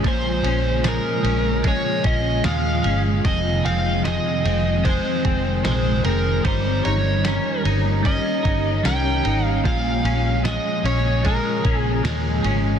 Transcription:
Already playing: ambient pad C#3 F3 G#3 A#3 F4, clean electric guitar G#3 C#4 F4
0.03 fingered electric bass A#1, clean electric guitar A#2 F3 G#3 C#4 G#4, kick, ride
0.08 electric slide guitar C5
0.43 fingered electric bass A#1, clean electric guitar C#4 G#4, ride
0.48 clean electric guitar G#3
0.83 clean electric guitar A#2 F3 G#3 C#4 G#4, snare, ride, tambourine
0.88 electric slide guitar A#4
1.23 fingered electric bass A#1, clean electric guitar C#4 G#4, ride
1.29 clean electric guitar G#3
1.63 clean electric guitar F3 G#3, kick, ride
1.67 clean electric guitar C#4 G#4, electric slide guitar C#5
2.04 fingered electric bass A#1, clean electric guitar C#4 G#4, electric slide guitar D#5, kick, ride
2.09 clean electric guitar G#3
2.44 fingered electric bass D#2, clean electric guitar A#2 F3 G#3 C#4 G#4, electric slide guitar F5, snare, ride, tambourine
2.83 fingered electric bass G1, clean electric guitar C#4 G#4, ride
2.89 clean electric guitar G#3
3.24 clean electric guitar F2 C3 D#3 G#3 C4 G#4, ambient pad D#3 F3 C4, electric slide guitar D#5, kick, ride
3.63 fingered electric bass F1, clean electric guitar G#3 C4 G#4, electric slide guitar F5, ride
3.68 clean electric guitar D#3
4.04 clean electric guitar F2 C3 D#3 G#3 C4 G#4, electric slide guitar D#5, snare, ride, tambourine
4.44 fingered electric bass F1, clean electric guitar G#3 C4 G#4, ride
4.49 clean electric guitar D#3
4.84 clean electric guitar D#3 G#3 C4, electric slide guitar C5, kick, ride
4.89 clean electric guitar G#4
5.25 fingered electric bass F1, clean electric guitar G#3 C4 G#4, kick, ride
5.30 clean electric guitar D#3
5.63 fingered electric bass A#1, clean electric guitar F2 C3 D#3 G#3 C4 G#4, electric slide guitar C5, snare, ride, tambourine
6.04 fingered electric bass F1, clean electric guitar G#3 C4 G#4, electric slide guitar A#4, ride
6.09 clean electric guitar D#3
6.44 fingered electric bass G1, clean electric guitar G3 C#4 D#4 A#4, ambient pad G3 A#3 C#4 G4, electric slide guitar C5, kick, ride
6.83 fingered electric bass G1, clean electric guitar D#4 A#4, electric slide guitar C#5, ride
6.88 clean electric guitar C#4
7.24 clean electric guitar G3 C#4 D#4 A#4, snare, ride, tambourine
7.63 fingered electric bass G1, clean electric guitar D#4 A#4, ride
7.69 clean electric guitar C#4
8.03 clean electric guitar G3 C#4 D#4, electric slide guitar D#5, kick, ride
8.08 clean electric guitar A#4
8.43 fingered electric bass G1, clean electric guitar D#4 A#4, kick, ride
8.48 clean electric guitar C#4
8.83 fingered electric bass C2, clean electric guitar G3 C#4 D#4 A#4, electric slide guitar G5, snare, ride, tambourine
9.24 fingered electric bass G#1, clean electric guitar D#4 A#4, ride
9.29 clean electric guitar C#4
9.46 electric slide guitar F5
9.64 fingered electric bass A#1, clean electric guitar A#2 F3 G#3 C#4 G#4, ambient pad C#3 F3 G#3 A#3 F4, electric slide guitar F5, kick, ride
10.03 fingered electric bass A#1, clean electric guitar C#4 G#4, ride
10.08 clean electric guitar G#3
10.44 clean electric guitar A#2 F3 G#3 C#4, electric slide guitar D#5, snare, ride, tambourine
10.48 clean electric guitar G#4
10.84 fingered electric bass A#1, clean electric guitar C#4 G#4, electric slide guitar C#5, ride
10.89 clean electric guitar G#3
11.23 clean electric guitar F3 G#3 C#4, electric slide guitar A#4, kick, ride
11.28 clean electric guitar G#4
11.63 fingered electric bass A#1, clean electric guitar C#4 G#4, kick, ride
11.69 clean electric guitar G#3
11.81 electric slide guitar G#4
12.03 fingered electric bass D#2, clean electric guitar A#2 F3 G#3 C#4 G#4, snare, ride, tambourine
12.42 fingered electric bass G#1, clean electric guitar C#4 G#4, ride
12.47 clean electric guitar G#3

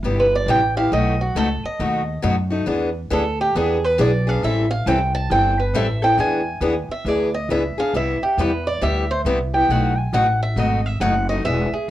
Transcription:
0.03 upright bass G1, steel-string acoustic guitar C3 G3 B3 E4 G4
0.20 steel-string acoustic guitar B4
0.35 steel-string acoustic guitar D5
0.46 upright bass A1, steel-string acoustic guitar C3 G3 B3 E4 G4 G5
0.77 steel-string acoustic guitar B3 E4 G4 F5
0.92 upright bass B1, steel-string acoustic guitar B2 F#3 A3 D#4 F#4 D#5
1.21 steel-string acoustic guitar F#4
1.35 upright bass C#2, steel-string acoustic guitar B2 F#3 A3 D#4 F#4 A4
1.64 steel-string acoustic guitar D#5, muted upright bass stroke
1.80 upright bass D#2, steel-string acoustic guitar B2 F#3 A3 D#4 F#4
2.22 upright bass F#2, steel-string acoustic guitar B2 F#3 A3 D#4 F#4
2.50 steel-string acoustic guitar A3 D#4 F#4
2.66 upright bass E2, steel-string acoustic guitar E3 B3 D4 G#4
3.10 upright bass D2, steel-string acoustic guitar E3 B3 D4 G#4 A4
3.41 steel-string acoustic guitar G4
3.55 upright bass E2, steel-string acoustic guitar E3 B3 D4 G#4
3.84 steel-string acoustic guitar B4
3.98 upright bass B1, steel-string acoustic guitar E3 B3 D4 G#4 D5
4.27 steel-string acoustic guitar B3 D4 G#4 F5
4.42 upright bass A1, steel-string acoustic guitar E3 G3 C4 E4 A4 E5
4.71 steel-string acoustic guitar F5
4.86 upright bass C2, steel-string acoustic guitar E3 G3 C4 E4 A4 G5
5.15 steel-string acoustic guitar A5
5.30 upright bass G1, steel-string acoustic guitar E3 G3 C4 E4 A4 G5
5.59 steel-string acoustic guitar B4
5.74 upright bass A1, steel-string acoustic guitar E3 G3 C4 E4 A4 E5
6.02 steel-string acoustic guitar C4 E4 A4 G5
6.18 upright bass E2, steel-string acoustic guitar E3 B3 D4 G#4 G#5
6.61 upright bass D#2, steel-string acoustic guitar E3 B3 D4 G#4
6.88 steel-string acoustic guitar E5, muted upright bass stroke
7.05 upright bass D2, steel-string acoustic guitar E3 B3 D4 G#4 D5
7.34 steel-string acoustic guitar D#5
7.49 upright bass C#2, steel-string acoustic guitar E3 B3 D4 G#4 E5
7.77 steel-string acoustic guitar B3 D4 G#4 F5, muted upright bass stroke
7.93 upright bass C2, steel-string acoustic guitar C3 G3 B3 E4 G4 E5
8.21 steel-string acoustic guitar G4, muted upright bass stroke
8.37 upright bass E2, steel-string acoustic guitar C3 G3 B3 E4 G4 B4
8.67 steel-string acoustic guitar D5
8.81 upright bass D2, steel-string acoustic guitar C3 G3 B3 E4 G4 E5
9.11 steel-string acoustic guitar C5
9.25 upright bass C2, steel-string acoustic guitar C3 G3 B3 E4 G4
9.53 steel-string acoustic guitar B3 E4 G4 G5
9.69 upright bass B1, steel-string acoustic guitar B2 F#3 A3 D#4 F#4 F#5
9.98 steel-string acoustic guitar G#5
10.13 upright bass A1, steel-string acoustic guitar B2 F#3 A3 D#4 F#4 F#5
10.43 steel-string acoustic guitar E5
10.56 upright bass G#1, steel-string acoustic guitar B2 F#3 A3 D#4 F#4 D#5
10.86 steel-string acoustic guitar E5
11.00 upright bass F#1, steel-string acoustic guitar B2 F#3 A3 D#4 F#4 F#5
11.29 steel-string acoustic guitar A3 D#4 F#4 D#5
11.45 upright bass E1, steel-string acoustic guitar E3 B3 D4 G#4 E5
11.72 steel-string acoustic guitar G#4, muted upright bass stroke

